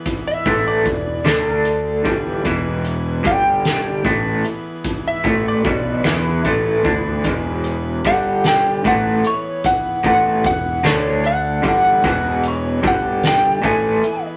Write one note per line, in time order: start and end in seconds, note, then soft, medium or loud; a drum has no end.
0.00 1.24 E3 medium
0.00 1.24 B3 medium
0.00 1.24 G#4 medium
0.00 1.24 B4 medium
0.06 kick loud
0.06 closed hi-hat medium
0.28 0.65 E5 medium
0.46 0.83 A1 loud
0.46 0.84 A2 medium
0.46 0.85 E3 medium
0.46 0.85 A3 medium
0.46 kick loud
0.46 closed hi-hat medium
0.68 1.25 D5 medium
0.85 1.23 E1 medium
0.85 1.17 E2 medium
0.85 1.17 B2 medium
0.85 kick medium
0.85 closed hi-hat medium
1.25 2.01 D2 medium
1.25 2.04 D3 medium
1.25 2.05 D3 medium
1.25 2.04 A3 medium
1.25 2.06 A3 medium
1.25 2.04 D4 medium
1.25 2.05 A4 medium
1.25 2.04 A4 medium
1.25 2.06 D5 medium
1.25 snare loud
1.25 closed hi-hat medium
1.65 closed hi-hat medium
2.04 2.42 G1 medium
2.04 2.43 G2 medium
2.04 2.44 D3 medium
2.04 3.25 E3 medium
2.04 2.44 G3 loud
2.04 3.25 B3 medium
2.04 3.25 B4 medium
2.04 3.24 G#5 medium
2.04 kick loud
2.04 closed hi-hat medium
2.45 3.21 E1 loud
2.45 3.23 E2 medium
2.45 3.23 B2 loud
2.45 3.24 E3 loud
2.45 kick medium
2.45 closed hi-hat medium
2.85 closed hi-hat medium
3.23 4.01 G1 medium
3.23 4.03 G2 loud
3.23 4.03 D3 loud
3.23 4.03 G3 loud
3.23 4.03 G5 medium
3.23 kick loud
3.23 closed hi-hat medium
3.27 4.05 D3 medium
3.27 4.06 G3 medium
3.27 4.05 G4 medium
3.27 4.06 D5 medium
3.65 snare loud
3.65 closed hi-hat medium
4.04 4.42 A1 medium
4.04 4.44 A2 medium
4.04 4.44 E3 medium
4.04 8.01 E3 medium
4.04 4.44 A3 loud
4.04 8.01 B3 medium
4.04 8.01 G#4 medium
4.04 8.01 B4 medium
4.04 kick loud
4.04 closed hi-hat medium
4.45 closed hi-hat medium
4.84 kick medium
4.84 closed hi-hat medium
5.08 5.45 E5 medium
5.24 5.62 A1 loud
5.24 5.63 A2 medium
5.24 5.64 E3 medium
5.24 5.64 A3 loud
5.24 kick loud
5.24 closed hi-hat medium
5.48 6.05 D5 medium
5.64 6.02 B1 medium
5.64 6.03 B2 loud
5.64 6.04 F#3 loud
5.64 6.04 B3 loud
5.64 kick loud
5.64 closed hi-hat medium
6.04 6.41 E2 medium
6.04 6.43 E3 medium
6.04 6.44 B3 loud
6.04 6.44 E4 loud
6.04 7.61 E4 medium
6.04 snare loud
6.04 closed hi-hat medium
6.45 6.82 A1 medium
6.45 6.83 A2 medium
6.45 6.84 E3 loud
6.45 6.84 A3 loud
6.45 kick loud
6.45 closed hi-hat medium
6.84 7.22 D2 medium
6.84 7.23 D3 medium
6.84 7.24 A3 medium
6.84 7.24 D4 loud
6.84 kick loud
6.84 closed hi-hat medium
7.24 8.01 E1 medium
7.24 8.03 E2 loud
7.24 8.04 B2 medium
7.24 8.04 E3 medium
7.24 kick loud
7.24 closed hi-hat medium
7.64 closed hi-hat medium
8.04 8.84 G2 medium
8.04 8.83 D3 loud
8.04 8.85 D3 medium
8.04 8.84 G3 medium
8.04 8.85 G3 medium
8.04 8.85 G4 medium
8.04 8.85 D5 medium
8.04 8.44 F#5 loud
8.04 kick loud
8.04 closed hi-hat medium
8.44 8.84 G5 medium
8.44 snare loud
8.44 closed hi-hat medium
8.84 9.22 A1 medium
8.84 9.23 A2 medium
8.84 9.23 E3 medium
8.84 10.83 E3 medium
8.84 9.24 A3 loud
8.84 10.82 B3 medium
8.84 10.82 G#4 medium
8.84 10.82 B4 medium
8.84 9.24 F#5 medium
8.84 kick loud
8.84 closed hi-hat medium
9.24 9.64 C#5 medium
9.24 closed hi-hat medium
9.64 10.04 F#5 medium
9.64 kick medium
9.64 closed hi-hat loud
10.04 10.42 A1 medium
10.04 10.43 A2 medium
10.04 10.43 E3 loud
10.04 10.43 A3 loud
10.04 10.44 F#5 medium
10.04 kick loud
10.04 closed hi-hat medium
10.44 10.81 E1 medium
10.44 10.76 E2 medium
10.44 10.76 B2 medium
10.44 10.84 F#5 medium
10.44 kick loud
10.44 closed hi-hat medium
10.83 11.59 D2 medium
10.83 11.62 D3 loud
10.83 11.64 D3 medium
10.83 11.63 A3 loud
10.83 11.64 A3 soft
10.83 11.63 D4 loud
10.83 11.64 D4 medium
10.83 11.64 A4 medium
10.83 11.24 C#5 medium
10.83 snare loud
10.83 closed hi-hat loud
11.24 11.64 F#5 loud
11.24 closed hi-hat medium
11.62 12.01 G1 medium
11.62 12.02 G2 medium
11.62 12.02 D3 medium
11.62 12.02 G3 loud
11.62 12.83 B3 medium
11.62 12.83 B4 medium
11.62 12.84 G#5 medium
11.62 kick loud
11.62 closed hi-hat medium
11.66 12.84 E3 medium
11.66 12.05 F#5 medium
12.04 12.80 E1 loud
12.04 12.82 E2 medium
12.04 12.83 B2 medium
12.04 12.83 E3 loud
12.04 12.44 F#5 medium
12.04 kick loud
12.04 closed hi-hat loud
12.44 closed hi-hat medium
12.48 12.85 C#5 medium
12.81 13.60 G1 loud
12.81 13.62 G2 loud
12.81 13.61 D3 medium
12.81 13.61 D3 loud
12.81 13.61 G3 medium
12.81 13.62 G3 loud
12.81 13.62 G4 medium
12.81 13.62 D5 medium
12.81 kick loud
12.81 closed hi-hat medium
12.87 13.24 F#5 loud
13.23 13.64 G5 medium
13.23 snare loud
13.23 closed hi-hat medium
13.62 14.01 A1 loud
13.62 14.01 A2 medium
13.62 14.37 E3 medium
13.62 14.02 E3 loud
13.62 14.02 A3 loud
13.62 14.37 B3 medium
13.62 14.37 G#4 medium
13.62 14.37 B4 medium
13.62 14.26 G#5 loud
13.62 kick medium
13.62 closed hi-hat medium
14.04 closed hi-hat medium